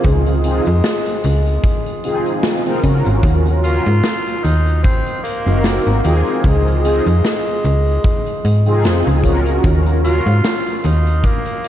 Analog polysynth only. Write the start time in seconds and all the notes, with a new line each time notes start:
Already playing: C4 D#4 F4 G#4
0.44 C4 D#4 F4 G#4
2.03 C4 D#4 F4 G#4
2.65 C4 D#4 F4 A#4
2.83 C#4 F4 F#4 A#4
3.63 C#4 F4 F#4 A#4
5.46 C4 D#4 F#4 A#4
6.04 C4 D#4 F4 G#4
6.83 C4 D#4 F4 G#4
8.65 C4 D#4 F4 G#4
9.24 C#4 F4 F#4 A#4
10.03 C#4 F4 F#4 A#4